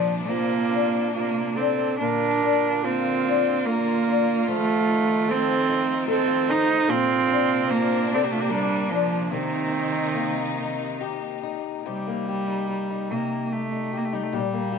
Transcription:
Already playing: steel-string acoustic guitar A#2 F3 D4 A#4, string section C3 A#3 D4, cello F3
0.28 cello A#3, steel-string acoustic guitar C4, flute F4
0.71 steel-string acoustic guitar D4
1.14 cello A#3, flute F4
1.56 cello C4, steel-string acoustic guitar D4, flute A4
1.98 steel-string acoustic guitar A#2, string section D3 F4, cello D4, flute A#4
2.42 steel-string acoustic guitar D4
2.83 steel-string acoustic guitar A#3, cello C4, flute F4
3.26 steel-string acoustic guitar D4
3.66 cello A#3, flute F4, steel-string acoustic guitar A#4
4.07 steel-string acoustic guitar D4
4.47 string section D#3 A3, steel-string acoustic guitar F3, cello A3, flute F4
4.89 steel-string acoustic guitar D#4
5.29 steel-string acoustic guitar C4, cello C4, flute A4
5.69 steel-string acoustic guitar D#4
6.08 cello C4, steel-string acoustic guitar A4, flute A4
6.49 steel-string acoustic guitar D#4, cello D#4, flute C5
6.87 steel-string acoustic guitar A#2, string section C3 A#3 D4, cello C4, flute F4
7.28 steel-string acoustic guitar D4
7.68 cello A#3, steel-string acoustic guitar C4, flute F4
8.08 steel-string acoustic guitar D4
8.14 cello C4, flute A4
8.24 cello A#3, flute G4
8.31 cello A3, flute F4
8.40 cello A#3, flute G4
8.49 cello G3, flute D4, steel-string acoustic guitar A#4
8.89 cello F3, steel-string acoustic guitar D4, flute D4
9.30 steel-string acoustic guitar C3, string section C3 D#4, cello D#3, flute C4
9.74 steel-string acoustic guitar D#4
10.15 steel-string acoustic guitar A#3
10.58 steel-string acoustic guitar D#4
11.01 steel-string acoustic guitar G4
11.43 steel-string acoustic guitar D#4
11.86 steel-string acoustic guitar C3 G4, cello G3
12.07 steel-string acoustic guitar A#3
12.29 steel-string acoustic guitar G4
12.48 steel-string acoustic guitar D#4
12.69 steel-string acoustic guitar G4
12.91 steel-string acoustic guitar D#4
13.11 steel-string acoustic guitar C3 G4, cello A#3
13.52 cello A3, steel-string acoustic guitar G4
13.72 steel-string acoustic guitar D#4
13.93 steel-string acoustic guitar G4
13.97 cello A#3
14.05 cello A3
14.13 cello G3, steel-string acoustic guitar D#4
14.23 cello A3
14.33 steel-string acoustic guitar A#2 G4, cello G3
14.54 steel-string acoustic guitar A#3
14.72 steel-string acoustic guitar G4

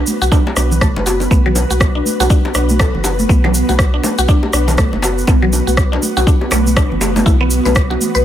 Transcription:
Already playing: ambient pad B3 F#4 B4
0.07 high conga, shaker
0.21 sub bass B1, synth arpeggio sound F#4, muted conga, shaker
0.32 synth arpeggio sound D4, kick, low bongo, shaker
0.46 high bongo, high conga
0.56 sub bass B1, synth arpeggio sound D4, cross-stick, low bongo, muted conga, shaker
0.71 low conga, shaker
0.81 synth arpeggio sound A4, kick, cross-stick, high conga, low conga, shaker
0.96 sub bass F#1, low bongo, muted conga, high conga
1.06 synth arpeggio sound F#4, high bongo, shaker
1.20 low bongo, shaker
1.31 sub bass B1, synth arpeggio sound B3, kick, muted conga, high conga, shaker
1.46 synth arpeggio sound F#3, low conga
1.55 low bongo, shaker
1.70 sub bass B1, synth arpeggio sound F#4, muted conga, high conga, shaker
1.80 kick, cross-stick, low bongo, shaker
1.95 synth arpeggio sound D4
2.05 high conga, shaker
2.20 sub bass B1, synth arpeggio sound F#4, low bongo, muted conga, shaker
2.30 synth arpeggio sound D4, kick, shaker
2.45 high bongo, low bongo
2.54 sub bass B1, synth arpeggio sound D4, cross-stick, muted conga, shaker
2.69 high conga, shaker
2.79 synth arpeggio sound A4, kick, cross-stick, low bongo, shaker
2.94 sub bass F#1, muted conga, low conga
3.04 synth arpeggio sound F#4, high bongo, low bongo, shaker
3.19 high conga, shaker
3.29 sub bass B1, synth arpeggio sound B3, kick, muted conga, high conga, shaker
3.44 synth arpeggio sound F#3, low bongo, low conga
3.54 shaker
3.69 sub bass B1, synth arpeggio sound F#4, low bongo, muted conga, high conga, shaker
3.79 kick, cross-stick, shaker
3.94 synth arpeggio sound D4
4.04 low bongo, high conga, shaker
4.18 sub bass B1, synth arpeggio sound F#4, muted conga, shaker
4.28 synth arpeggio sound D4, kick, low bongo, shaker
4.43 high bongo, high conga
4.53 sub bass B1, synth arpeggio sound D4, cross-stick, muted conga, shaker
4.68 low bongo, low conga, shaker
4.78 synth arpeggio sound A4, kick, cross-stick, high conga, low conga, shaker
4.93 sub bass F#1, low bongo, muted conga, high conga
5.02 synth arpeggio sound F#4, high bongo, shaker
5.18 shaker
5.27 sub bass B1, synth arpeggio sound B3, kick, low bongo, muted conga, high conga, shaker
5.42 synth arpeggio sound F#3, low conga
5.53 low bongo, shaker
5.67 sub bass B1, synth arpeggio sound F#4, muted conga, high conga, shaker
5.77 kick, cross-stick, shaker
5.92 synth arpeggio sound D4, low bongo
6.02 high conga, shaker
6.17 sub bass B1, synth arpeggio sound F#4, low bongo, muted conga, shaker
6.27 synth arpeggio sound D4, kick, shaker
6.41 high bongo
6.51 sub bass B1, synth arpeggio sound A3, cross-stick, low bongo, muted conga, shaker
6.67 high conga, shaker
6.76 synth arpeggio sound D4, kick, cross-stick, low bongo, shaker
6.91 sub bass F#1, muted conga, low conga
7.01 synth arpeggio sound A3, high bongo, shaker
7.16 low bongo, high conga, shaker
7.26 sub bass B1, ambient pad E3, synth arpeggio sound E4, kick, low bongo, muted conga, high conga, shaker
7.41 synth arpeggio sound B3, low conga
7.50 shaker
7.65 sub bass B1, synth arpeggio sound B4, low bongo, muted conga, high conga, shaker
7.75 kick, cross-stick, shaker
7.90 synth arpeggio sound F#4, low bongo
8.01 high conga, shaker
8.15 sub bass B1, synth arpeggio sound B4, muted conga, shaker

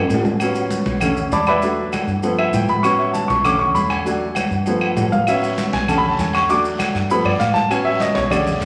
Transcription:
0.09 fingered electric bass A2, high conga, low agogo, maracas
0.14 low timbale
0.25 high conga, low timbale, maracas
0.40 grand piano F#3 B3 C#4, high conga, low agogo, claves, maracas
0.55 high conga, low agogo, maracas
0.70 high conga, maracas
0.86 fingered electric bass B1, high conga, low agogo, maracas
1.00 grand piano D3 A3 C#4, high conga, low conga, low agogo, claves, maracas
1.17 high conga, low conga, maracas
1.32 fingered electric bass E2, grand piano D5 A5 B5 D6, high conga, low agogo, maracas
1.46 grand piano B4 D5 E5 B5, high conga, low agogo, claves, maracas
1.62 grand piano F#3 A3 D4, high conga, low agogo, maracas
1.78 high conga
1.93 high conga, low agogo, claves, maracas
2.07 fingered electric bass G2, maracas
2.23 grand piano F3 A3 B3, high conga, low agogo, maracas
2.39 grand piano E5, high conga, low agogo, claves
2.53 fingered electric bass A2, grand piano G5, high conga, low agogo, maracas
2.69 grand piano B5, high conga, maracas
2.83 grand piano F#3 B3 C#4 C#6, high conga, low agogo, claves, maracas
2.99 grand piano E5, high conga, low agogo
3.13 grand piano A5, high conga, maracas
3.28 fingered electric bass B1, grand piano C#6, high conga, low agogo, maracas
3.44 grand piano D3 A3 C#4 D6, high conga, low conga, low agogo, claves, maracas
3.59 grand piano C#6, high conga, low conga
3.75 fingered electric bass E2, grand piano B5, high conga, low agogo, maracas
3.90 grand piano G#5, low agogo, claves, maracas
4.05 grand piano F#3 A3 D4, high conga, low agogo, maracas
4.22 high conga
4.35 high conga, low agogo, claves, maracas
4.51 fingered electric bass G2, maracas
4.66 grand piano F3 A3 B3, high conga, low agogo, maracas
4.81 high conga, low agogo, claves
4.97 fingered electric bass A2, high conga, low timbale, low agogo, maracas
5.12 grand piano F5, high conga, maracas
5.27 grand piano F#3 B3 C#4 E5, high conga, low agogo, long guiro, claves, maracas
5.43 high conga, low agogo, maracas
5.58 high conga, short guiro, maracas
5.73 fingered electric bass B1, grand piano G#5, high conga, low agogo, short guiro, maracas
5.88 grand piano D3 A3 C#4 A5, high conga, low conga, low agogo, long guiro, claves, maracas
5.98 grand piano B5
6.04 high conga, low conga
6.09 grand piano A5
6.18 fingered electric bass E2, grand piano G#5, high conga, low agogo, short guiro, maracas
6.33 grand piano C#6, low agogo, short guiro, claves, maracas
6.49 grand piano F#3 A3 D4 D6, high conga, low agogo, long guiro, maracas
6.64 high conga, maracas
6.79 high conga, low agogo, short guiro, claves, maracas
6.95 fingered electric bass G2, short guiro, maracas
7.10 grand piano F3 A3 B3 B5, high conga, low agogo, long guiro, maracas
7.25 fingered electric bass G2, grand piano D5, high conga, low agogo, claves
7.40 fingered electric bass A2, grand piano F5, high conga, low agogo, short guiro, maracas
7.54 grand piano A5, high conga, short guiro, maracas
7.70 grand piano F#3 B3 C#4 G#5, high conga, low agogo, long guiro, claves, maracas
7.85 grand piano E5, high conga, low agogo
8.00 grand piano D#5, high conga, short guiro, maracas
8.15 fingered electric bass B1, grand piano C#5, high conga, low agogo, short guiro, maracas
8.30 grand piano C#3 D3 A3 D5, high conga, low conga, low agogo, long guiro, claves, maracas
8.46 high conga, low conga, maracas
8.61 fingered electric bass E2, high conga, low agogo, short guiro, maracas

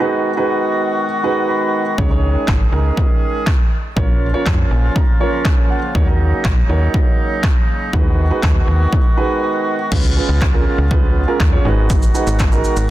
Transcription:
0.00 woodwind section D#3 G#3 B3 F#4, grand piano D#4 F#4 G#4 B4
0.37 grand piano D#4 F#4 G#4 B4
1.23 grand piano D#4 F#4 G#4 B4
1.49 grand piano B5
1.98 fm bass C#2, grand piano C#4 D#4 G#4 C#5, woodwind section C#4 G#4, kick
2.10 grand piano C#4 D#4 G#4 C#5
2.48 fm bass G#1, kick, clap
2.72 fm bass C#2, grand piano C#4 D#4 G#4 A#4
2.97 kick
3.47 kick, clap
3.96 fm bass A#1, woodwind section C#3 F3 A#3 F4, grand piano C#4 F4 A#4 C#5, kick
4.33 grand piano C#4 F4 A#4 C#5
4.46 fm bass F2, kick, clap
4.71 fm bass A#1, grand piano G#5
4.96 grand piano A#5, kick
5.20 grand piano C#4 F4 A#4 C#5
5.33 grand piano A#5
5.45 grand piano G#5, kick, clap
5.70 grand piano F#5
5.95 fm bass D#2, woodwind section F#3 D#4, grand piano D#4 F#4 A#4 C#5, kick
6.07 grand piano D#4 F#4 A#4 D#5
6.45 fm bass A#1, kick, clap
6.69 fm bass D#2, grand piano D#4 F#4 A#4 C#5
6.94 kick
7.43 kick, clap
7.93 fm bass D#2, woodwind section D#3 G#3 B3 F#4, grand piano D#4 F#4 G#4 B4, kick
8.30 grand piano D#4 F#4 G#4 B4
8.43 fm bass D#2, kick, clap
8.68 fm bass D#2
8.93 kick
9.17 grand piano D#4 F#4 G#4 B4
9.42 grand piano D#5
9.91 fm bass C#2, woodwind section C#3 G#3 B3 F4, grand piano C#4 F4 G#4 B4, kick, crash
10.16 grand piano C#4 F4 G#4 B4
10.29 fm bass C#2
10.41 kick, clap
10.53 grand piano C#4 F4 G#4 A#4
10.78 fm bass C#2
10.91 grand piano C#4 F4 G#4 B4, kick
11.28 grand piano C#4 F4 G#4 A#4
11.40 fm bass D#2, kick, clap
11.52 grand piano C#4 F4 G#4 C#5
11.65 fm bass G#1, woodwind section D#3 F#4, grand piano D#4 F#4 G#4 B4
11.90 kick, shaker
12.03 shaker
12.14 grand piano D#4 F#4 G#4 B4, shaker
12.27 fm bass G#1, shaker
12.39 kick, clap, shaker
12.52 grand piano D#4 F#4 G#4 A#4, shaker
12.64 shaker
12.77 fm bass G#1, shaker

